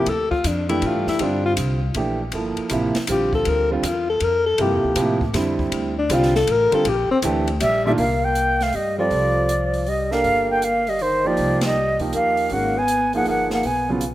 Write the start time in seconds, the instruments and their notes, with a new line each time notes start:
Already playing: alto saxophone G4
0.06 upright bass D2, alto saxophone A4, ride
0.31 alto saxophone F4, kick
0.44 upright bass F2, alto saxophone D4, hi-hat pedal, ride
0.69 grand piano E3 A3 D4 G4, alto saxophone E4, ride
0.82 upright bass A2, alto saxophone F4, ride
0.95 upright bass G2
1.07 upright bass F2, alto saxophone E4, snare
1.19 upright bass G2, grand piano D3 G3 C4 F4, alto saxophone D4, ride
1.46 alto saxophone F4
1.57 upright bass C2, hi-hat pedal, ride
1.94 upright bass A#1, grand piano E3 A3 D4 G4, ride
2.32 upright bass G1, grand piano F3 A#3 E4 A4, ride
2.57 muted upright bass stroke, ride
2.69 upright bass A1, grand piano C3 F3 A#3 E4, hi-hat pedal, ride
2.95 muted upright bass stroke, snare, ride
3.07 upright bass A#1, grand piano D3 G3 C4 F4, hi-hat pedal, ride
3.11 alto saxophone G4
3.33 alto saxophone A4, kick
3.45 upright bass D2, alto saxophone A#4, ride
3.71 grand piano D3 G3 C4 F4, alto saxophone D4
3.83 upright bass E2, alto saxophone F4, hi-hat pedal, ride
4.10 alto saxophone A4
4.20 upright bass F2, alto saxophone A#4, ride
4.46 alto saxophone A4
4.58 upright bass G2, grand piano C3 F3 A#3 E4, alto saxophone G4, ride
4.71 upright bass F2
4.84 upright bass D2
4.96 upright bass A2, grand piano C3 F3 A#3 E4, hi-hat pedal, ride
5.21 kick
5.33 upright bass F2, grand piano D3 G3 C4 E4, snare, ride
5.59 kick
5.72 upright bass D2, ride
5.99 alto saxophone D4
6.09 upright bass C2, grand piano D3 G3 C4 F4, hi-hat pedal, ride
6.14 alto saxophone F4
6.23 snare
6.35 alto saxophone A4, snare
6.47 upright bass A1, alto saxophone A#4, ride
6.71 grand piano D3 G3 C4 F4, alto saxophone A4, muted upright bass stroke, ride
6.85 upright bass A#1, alto saxophone G4, ride
7.10 alto saxophone C4, muted upright bass stroke
7.22 upright bass D2, grand piano E3 A3 D4 G4, hi-hat pedal, ride
7.47 ride
7.60 upright bass A#1, alto saxophone G3, flute E5, hi-hat pedal, ride
7.86 grand piano A#2 D#3 A3 D4 F4, alto saxophone G3, flute E5
7.98 upright bass C2, alto saxophone A#3, flute F5, open hi-hat
8.25 alto saxophone A#3, flute G5
8.35 closed hi-hat
8.61 alto saxophone A3, flute F5, snare, open hi-hat
8.72 upright bass G2, alto saxophone G3, flute D#5, open hi-hat
8.98 alto saxophone F3, grand piano G3 C4 F4 A4, flute D5
9.10 upright bass C2, open hi-hat
9.49 closed hi-hat
9.74 open hi-hat
9.86 alto saxophone G3, flute D#5, open hi-hat
10.11 alto saxophone A#3, grand piano D4 G4 A4 A#4, flute F5, snare
10.24 upright bass G1, open hi-hat
10.51 alto saxophone A#3, flute G5
10.62 alto saxophone A#3, flute F5, closed hi-hat
10.87 alto saxophone G3, flute D#5, open hi-hat
10.99 alto saxophone D#3, flute C5, open hi-hat
11.24 grand piano F3 A#3 D#4 G4, alto saxophone F3, flute D5
11.37 upright bass C2, open hi-hat
11.61 alto saxophone G3, flute D#5, snare, ride
11.99 grand piano F3 A#3 D#4 G4, kick, open hi-hat
12.13 upright bass D#2, alto saxophone A#3, flute F5, closed hi-hat
12.37 open hi-hat
12.50 upright bass G#1, grand piano D#3 G#3 C#4 F#4, alto saxophone A#3, flute F#5, open hi-hat
12.77 alto saxophone B3, flute G#5
12.88 closed hi-hat
13.13 grand piano F3 A#3 D#4 G#4, alto saxophone A#3, flute F#5, open hi-hat
13.25 upright bass G1, alto saxophone A#3, open hi-hat
13.30 flute F#5
13.50 alto saxophone A#3, flute F#5, snare
13.63 upright bass B1, alto saxophone B3, flute G#5, open hi-hat
13.89 grand piano C#3 F#3 B3 F4
14.01 closed hi-hat